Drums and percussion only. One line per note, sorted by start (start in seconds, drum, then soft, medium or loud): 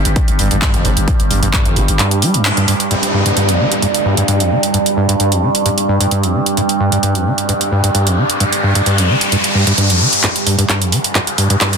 0.05 closed hi-hat medium
0.16 kick loud
0.16 closed hi-hat medium
0.28 closed hi-hat medium
0.39 open hi-hat loud
0.51 closed hi-hat medium
0.62 kick loud
0.62 clap loud
0.62 closed hi-hat medium
0.74 closed hi-hat medium
0.85 open hi-hat medium
0.97 closed hi-hat medium
1.08 kick loud
1.08 closed hi-hat medium
1.20 closed hi-hat medium
1.31 open hi-hat loud
1.43 closed hi-hat medium
1.53 kick loud
1.53 clap loud
1.53 closed hi-hat medium
1.65 closed hi-hat medium
1.76 open hi-hat medium
1.88 closed hi-hat medium
1.99 clap medium
1.99 closed hi-hat medium
2.11 closed hi-hat medium
2.22 open hi-hat loud
2.34 closed hi-hat medium
2.45 clap loud
2.45 closed hi-hat medium
2.57 closed hi-hat medium
2.68 open hi-hat medium
2.80 closed hi-hat medium
2.91 closed hi-hat medium
3.03 closed hi-hat medium
3.26 closed hi-hat medium
3.37 closed hi-hat medium
3.49 closed hi-hat medium
3.72 closed hi-hat medium
3.82 closed hi-hat medium
3.94 closed hi-hat medium
4.17 closed hi-hat medium
4.28 closed hi-hat medium
4.40 closed hi-hat medium
4.63 closed hi-hat medium
4.74 closed hi-hat medium
4.86 closed hi-hat medium
5.09 closed hi-hat medium
5.20 closed hi-hat medium
5.32 closed hi-hat medium
5.55 closed hi-hat medium
5.66 closed hi-hat medium
5.78 closed hi-hat medium
6.01 closed hi-hat medium
6.11 closed hi-hat medium
6.23 closed hi-hat medium
6.46 closed hi-hat medium
6.57 closed hi-hat medium
6.69 closed hi-hat medium
6.92 closed hi-hat medium
7.03 closed hi-hat medium
7.15 closed hi-hat medium
7.38 closed hi-hat medium
7.49 closed hi-hat medium
7.61 closed hi-hat medium
7.84 closed hi-hat medium
7.95 closed hi-hat medium
8.07 closed hi-hat medium
8.30 closed hi-hat medium
8.40 closed hi-hat medium
8.53 closed hi-hat medium
8.75 closed hi-hat medium
8.86 closed hi-hat medium
8.98 closed hi-hat medium
9.21 closed hi-hat medium
9.32 closed hi-hat medium
9.44 closed hi-hat medium
9.67 closed hi-hat medium
9.78 closed hi-hat medium
9.90 closed hi-hat medium
10.13 closed hi-hat medium
10.24 kick loud
10.24 clap soft
10.24 closed hi-hat medium
10.36 closed hi-hat medium
10.47 open hi-hat loud
10.59 closed hi-hat medium
10.69 kick loud
10.69 clap medium
10.69 closed hi-hat medium
10.82 closed hi-hat medium
10.92 open hi-hat medium
11.04 closed hi-hat medium
11.15 kick loud
11.15 clap medium
11.15 closed hi-hat medium
11.27 closed hi-hat medium
11.38 open hi-hat loud
11.50 closed hi-hat medium
11.61 kick loud
11.61 clap medium
11.61 closed hi-hat medium
11.73 closed hi-hat medium